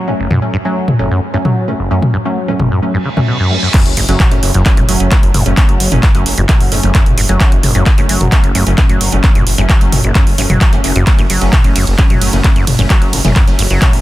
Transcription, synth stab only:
0.08 0.29 F#3 medium
0.08 0.29 A3 medium
0.08 0.29 C#4 loud
0.42 0.55 F#3 medium
0.42 0.55 A3 medium
0.42 0.55 C#4 loud
0.65 0.86 F#3 medium
0.65 0.86 A3 medium
0.65 0.86 C#4 loud
0.99 1.20 F#3 medium
0.99 1.20 A3 medium
0.99 1.20 C#4 loud
1.34 1.55 F#3 medium
1.34 1.55 A3 medium
1.34 1.55 C#4 loud
1.68 1.81 F#3 medium
1.68 1.81 A3 medium
1.68 1.81 C#4 medium
1.91 2.12 F#3 medium
1.91 2.12 A3 medium
1.91 2.12 C#4 loud
2.25 2.38 F#3 medium
2.25 2.38 A3 medium
2.25 2.38 C#4 medium
2.48 2.69 F#3 medium
2.48 2.69 A3 medium
2.48 2.69 C#4 loud
2.83 3.04 F#3 medium
2.83 3.04 A3 medium
2.83 3.04 C#4 loud
3.17 3.38 F#3 medium
3.17 3.38 A3 medium
3.17 3.38 C#4 loud
3.51 3.64 F#3 medium
3.51 3.64 A3 medium
3.51 3.64 C#4 medium
3.74 3.95 F#3 medium
3.74 3.95 A3 medium
3.74 3.95 C#4 loud
4.09 4.22 F#3 medium
4.09 4.22 A3 medium
4.09 4.22 C#4 loud
4.32 4.53 F#3 medium
4.32 4.53 A3 medium
4.32 4.53 C#4 loud
4.66 4.86 F#3 medium
4.66 4.86 A3 medium
4.66 4.86 C#4 loud
4.89 4.98 F#3 medium
4.89 4.98 A3 medium
4.89 4.98 C#4 medium
5.00 5.10 F#3 medium
5.00 5.10 A3 medium
5.00 5.10 C#4 medium
5.12 5.33 F#3 medium
5.12 5.33 A3 medium
5.12 5.33 C#4 medium
5.46 5.56 F#3 medium
5.46 5.56 A3 medium
5.46 5.56 C#4 medium
5.57 5.78 F#3 medium
5.57 5.78 A3 medium
5.57 5.78 C#4 loud
5.92 6.05 F#3 medium
5.92 6.05 A3 medium
5.92 6.05 C#4 loud
6.15 6.36 F#3 medium
6.15 6.36 A3 medium
6.15 6.36 C#4 loud
6.49 6.70 F#3 medium
6.49 6.70 A3 medium
6.49 6.70 C#4 loud
6.72 6.82 F#3 medium
6.72 6.82 A3 medium
6.72 6.82 C#4 medium
6.83 6.93 F#3 medium
6.83 6.93 A3 medium
6.83 6.93 C#4 medium
7.29 7.39 F#3 medium
7.29 7.39 A3 medium
7.29 7.39 C#4 medium
7.41 7.62 F#3 medium
7.41 7.62 A3 medium
7.41 7.62 C#4 loud
7.75 7.88 F#3 medium
7.75 7.88 A3 medium
7.75 7.88 C#4 loud
7.98 8.19 F#3 medium
7.98 8.19 A3 medium
7.98 8.19 C#4 loud
8.32 8.53 F#3 medium
8.32 8.53 A3 medium
8.32 8.53 C#4 loud
8.55 8.65 F#3 medium
8.55 8.65 A3 medium
8.55 8.65 C#4 medium
8.67 8.76 F#3 medium
8.67 8.76 A3 medium
8.67 8.76 C#4 medium
8.78 8.99 F#3 medium
8.78 8.99 C#4 medium
9.12 9.22 F#3 medium
9.12 9.22 A3 medium
9.12 9.22 C#4 medium
9.24 9.45 A3 medium
9.58 9.71 F#3 medium
9.58 9.71 A3 medium
9.58 9.71 C#4 loud
9.81 10.02 F#3 medium
9.81 10.02 A3 medium
9.81 10.02 C#4 loud
10.15 10.36 F#3 medium
10.15 10.36 A3 medium
10.15 10.36 C#4 loud
10.38 10.59 F#3 medium
10.38 10.59 A3 medium
10.38 10.59 C#4 medium
10.73 10.82 F#3 medium
10.73 10.82 A3 medium
10.73 10.82 C#4 loud
10.84 10.97 F#3 medium
10.84 10.97 A3 medium
10.84 10.97 C#4 medium
11.07 11.28 F#3 medium
11.07 11.28 A3 medium
11.07 11.28 C#4 loud
11.41 11.54 F#3 medium
11.41 11.54 A3 medium
11.41 11.54 C#4 loud
11.64 11.85 F#3 medium
11.64 11.85 A3 medium
11.64 11.85 C#4 loud
11.98 12.19 F#3 loud
11.98 12.19 A3 medium
11.98 12.19 C#4 loud
12.21 12.31 F#3 medium
12.21 12.31 A3 medium
12.21 12.31 C#4 medium
12.33 12.43 F#3 medium
12.33 12.43 A3 medium
12.33 12.43 C#4 medium
12.44 12.65 F#3 medium
12.44 12.65 A3 medium
12.44 12.65 C#4 loud
12.79 12.88 F#3 medium
12.79 12.88 A3 medium
12.79 12.88 C#4 medium
12.90 13.11 A3 medium
13.25 13.38 F#3 medium
13.25 13.38 A3 medium
13.25 13.38 C#4 loud
13.48 13.69 F#3 medium
13.48 13.69 A3 medium
13.48 13.69 C#4 loud
13.82 14.01 F#3 medium
13.82 14.01 A3 medium
13.82 14.01 C#4 loud

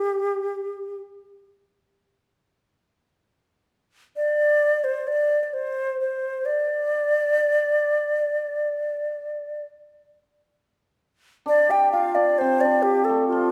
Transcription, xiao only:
0.00 1.00 G4 medium
4.16 4.85 D5 medium
4.84 5.09 C5 medium
5.07 5.43 D5 medium
5.43 5.55 D5 medium
5.53 5.97 C5 medium
6.00 6.47 C5 medium
6.45 9.65 D5 medium
11.48 11.72 D5 medium
11.71 11.91 G5 medium
11.92 12.16 F5 medium
12.15 12.40 D5 medium
12.38 12.62 C5 medium
12.61 12.84 D5 medium
12.82 13.06 G4 medium
13.04 13.27 A4 medium
13.28 13.52 F4 medium

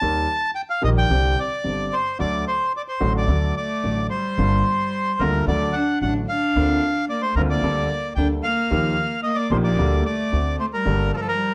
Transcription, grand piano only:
0.01 0.25 D#2 medium
0.01 0.25 D#3 medium
0.01 0.25 G3 soft
0.01 0.25 A#3 soft
0.01 0.25 G4 medium
0.82 1.06 A#1 medium
0.82 1.06 A#2 medium
0.82 1.05 D#3 medium
0.82 1.05 G3 medium
0.82 1.06 A#3 medium
0.82 1.06 G4 medium
1.10 1.34 C2 medium
1.10 1.34 C3 medium
1.10 1.33 D3 medium
1.10 1.33 G3 medium
1.10 1.33 C4 medium
1.10 1.34 G4 medium
1.64 1.87 G1 soft
1.64 1.87 G2 soft
1.64 1.87 D3 soft
1.64 1.87 G3 soft
1.64 1.87 C4 soft
1.64 1.87 G4 soft
2.19 2.42 D2 medium
2.19 2.42 D3 medium
2.19 2.42 F#3 medium
2.19 2.42 A3 soft
2.19 2.42 F#4 medium
3.00 3.24 A1 medium
3.00 3.24 A2 medium
3.00 3.24 D3 medium
3.00 3.24 F#3 medium
3.00 3.23 A3 medium
3.00 3.24 F#4 medium
3.28 3.51 D2 medium
3.28 3.52 D3 medium
3.28 3.51 F#3 soft
3.28 3.51 A3 soft
3.28 3.52 F#4 medium
3.84 4.06 A1 soft
3.84 4.06 A2 soft
3.84 4.06 D3 soft
3.84 4.06 F#3 soft
3.84 4.07 A3 soft
3.84 4.07 F#4 soft
4.38 4.61 G1 medium
4.38 4.61 G2 medium
4.38 4.61 D3 medium
4.38 4.61 G3 soft
4.38 4.61 A#3 soft
4.38 4.61 F4 medium
5.21 5.44 D2 medium
5.21 5.44 D3 medium
5.21 5.43 G3 soft
5.21 5.44 A#3 soft
5.21 5.44 F4 medium
5.48 5.71 D2 medium
5.48 5.71 D3 medium
5.48 5.71 F#3 soft
5.48 5.71 A3 soft
5.48 5.71 F#4 medium
6.02 6.25 A1 soft
6.02 6.25 A2 soft
6.02 6.24 D3 soft
6.02 6.25 F#3 soft
6.02 6.25 A3 soft
6.02 6.25 F#4 soft
6.57 6.79 D2 medium
6.57 6.79 D3 medium
6.57 6.79 A#3 soft
6.57 6.79 C4 soft
6.57 6.79 F4 medium
7.37 7.60 D2 medium
7.37 7.60 D3 medium
7.37 7.60 A#3 soft
7.37 7.60 C4 medium
7.37 7.60 F4 medium
7.63 7.86 D2 medium
7.63 7.86 D3 medium
7.63 7.86 G3 medium
7.63 7.86 A#3 soft
7.63 7.86 D4 medium
7.63 7.86 A4 medium
8.18 8.40 D2 soft
8.18 8.40 D3 soft
8.18 8.40 G3 soft
8.18 8.41 A#3 soft
8.18 8.40 D4 soft
8.18 8.41 A4 soft
8.71 8.94 D#2 medium
8.71 8.94 D#3 medium
8.71 8.94 F3 soft
8.71 8.94 A#3 soft
8.71 8.94 D#4 soft
8.71 8.94 G4 medium
9.51 9.75 A#1 medium
9.51 9.74 A#2 medium
9.51 9.74 F3 medium
9.51 9.74 A#3 medium
9.51 9.74 D#4 medium
9.51 9.75 G4 medium
9.78 10.02 D2 medium
9.78 10.02 D3 medium
9.78 10.02 G3 medium
9.78 10.02 A#3 soft
9.78 10.02 G4 medium
10.32 10.55 D2 soft
10.32 10.55 D3 soft
10.32 10.55 A3 soft
10.32 10.56 C4 soft
10.32 10.56 F#4 soft
10.85 11.09 G1 medium
10.85 11.09 G2 medium
10.85 11.09 D3 medium
10.85 11.09 G3 soft
10.85 11.09 A#3 soft
10.85 11.10 G4 medium

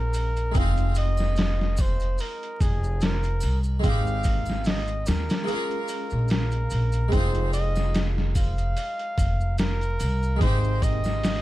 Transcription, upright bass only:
0.00 0.52 A#1 medium
0.55 2.16 F1 loud
2.61 3.39 F1 medium
3.43 3.80 C2 medium
3.84 5.04 G#1 loud
5.08 5.27 D#2 medium
6.12 6.71 A#1 medium
6.72 7.08 A#1 medium
7.12 8.73 F1 loud
9.18 9.97 F1 medium
10.01 10.37 C2 medium
10.41 11.42 G#1 loud

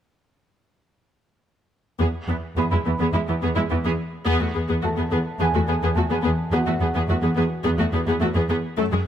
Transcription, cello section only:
2.01 2.06 E2 soft
2.29 2.35 E2 soft
2.57 2.63 E2 soft
2.71 2.77 E2 soft
2.85 2.91 E2 soft
2.99 3.05 E2 medium
3.14 3.19 E2 soft
3.28 3.34 E2 soft
3.42 3.48 E2 medium
3.56 3.62 E2 soft
3.70 3.76 E2 soft
3.85 3.91 E2 medium
4.27 4.40 E2 medium
4.41 4.47 E2 soft
4.55 4.61 E2 soft
4.69 4.75 E2 soft
4.83 4.89 E2 soft
4.98 5.03 E2 soft
5.12 5.18 E2 soft
5.40 5.46 E2 medium
5.54 5.60 E2 soft
5.68 5.74 E2 soft
5.82 5.88 E2 soft
5.96 6.02 E2 soft
6.10 6.16 E2 soft
6.24 6.30 E2 medium
6.52 6.58 E2 medium
6.67 6.72 E2 soft
6.80 6.86 E2 soft
6.94 7.00 E2 soft
7.08 7.14 E2 soft
7.23 7.29 E2 soft
7.37 7.43 E2 medium
7.65 7.71 E2 medium
7.79 7.85 E2 soft
7.93 7.99 E2 soft
8.07 8.13 E2 soft
8.22 8.28 E2 soft
8.36 8.42 E2 soft
8.50 8.56 E2 medium
8.78 8.84 F#2 medium
8.92 8.98 F#2 soft

